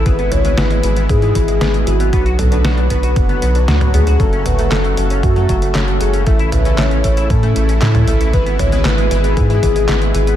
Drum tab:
HH |xxxxxxxxxxxxxxxx|xxxxxxxxxxxxxxxx|xxxxxxxxxxxxxxxx|xxxxxxxxxxxxxxxx|
CP |----------------|----------------|----x-------x---|----x-------x---|
SD |----o-------o---|----o-------o---|----o-------o---|----o-------o---|
T2 |--o-------------|--o----------o--|--o-------------|--o----------o--|
BD |o-------o-o-----|o-----o-o-------|o-------o-o-----|o-----o-o-------|

HH |xxxxxxxxxxxxxxxx|
CP |----x-------x---|
SD |----o-------o---|
T2 |--o-------------|
BD |o-------o-o-----|